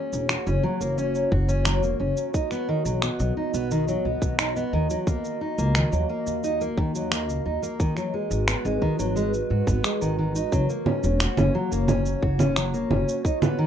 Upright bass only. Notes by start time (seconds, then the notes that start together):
0.13 E1
0.47 F#1
0.81 F#1
1.32 F#1
1.83 E1
2.00 F#1
2.85 B1
3.20 B1
3.54 B1
4.05 B1
4.22 B1
4.73 D#2
5.07 D#2
5.58 C#2
5.92 D#2
6.27 D#2
6.77 D#2
7.28 C#2
7.46 D#2
8.31 G#1
8.65 G#1
8.99 G#1
9.51 G#2
9.67 G#1
10.02 G#1
10.52 F#1
11.04 E1
11.38 F#1
11.72 F#1
12.22 F#1
12.74 E1
12.91 F#1